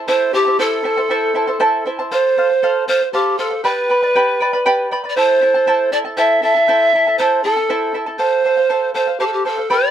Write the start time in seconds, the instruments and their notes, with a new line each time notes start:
0.08 charango E4 A4 C5 E5 A5, pan flute C5
0.33 charango E4 C5 E5 A5, pan flute G4
0.46 charango E4 C5 A5
0.59 charango E4 A4 C5 E5 A5, pan flute A4
0.84 charango E4 C5 E5 A5
0.97 charango E4 C5 A5
1.10 charango E4 A4 C5 E5 A5
1.35 charango E4 C5 E5 A5
1.47 charango E4 C5 A5
1.60 charango E4 A4 C5 E5 A5
1.86 charango E4 C5 E5 A5
1.99 charango E4 C5 A5
2.11 charango A4 C5 F5, pan flute C5
2.37 charango A4 C5 F5
2.50 charango C5 F5
2.63 charango A4 C5 F5
2.88 charango A4 C5 F5, pan flute C5
3.00 charango C5 F5
3.13 pan flute G4, charango A4 C5 F5
3.38 pan flute A4, charango A4 C5 F5
3.50 charango C5 F5
3.64 charango G4 B4 D5 G5 B5, pan flute B4
3.90 charango B4 D5 G5 B5
4.03 charango B4 D5 B5
4.16 charango G4 B4 D5 G5 B5
4.40 charango B4 D5 G5 B5
4.53 charango B4 D5 B5
4.66 charango G4 B4 D5 G5 B5
4.91 charango B4 D5 G5 B5
5.04 charango B4 D5 B5
5.09 pan flute D5
5.16 charango E4 A4 C5 E5 A5, pan flute C5
5.41 charango E4 A4 E5 A5
5.54 charango E4 A4 A5
5.67 charango E4 A4 C5 E5 A5
5.92 charango E4 A4 E5 A5, pan flute D5
6.05 charango E4 A4 A5
6.17 charango E4 A4 C5 E5 A5, pan flute E5
6.42 charango E4 A4 E5 A5, pan flute E5
6.55 charango E4 A4 A5
6.68 charango E4 A4 C5 E5 A5
6.94 charango E4 A4 E5 A5
7.07 charango E4 A4 A5
7.18 charango E4 A4 C5 E5 A5, pan flute C5
7.43 charango E4 A4 E5 A5, pan flute A4
7.57 charango E4 A4 A5
7.69 charango E4 A4 C5 E5 A5
7.94 charango E4 A4 E5 A5
8.06 charango E4 A4 A5
8.18 charango A4 C5 F5, pan flute C5
8.44 charango A4 C5 F5
8.57 charango C5 F5
8.69 charango A4 C5 F5
8.94 charango A4 C5 F5, pan flute C5
9.07 charango C5 F5
9.19 pan flute G4, charango A4 C5 F5
9.27 pan flute A4
9.33 pan flute G4
9.45 charango A4 C5 F5, pan flute A4
9.57 charango C5 F5
9.70 charango G4 B4 D5 G5 B5, pan flute D5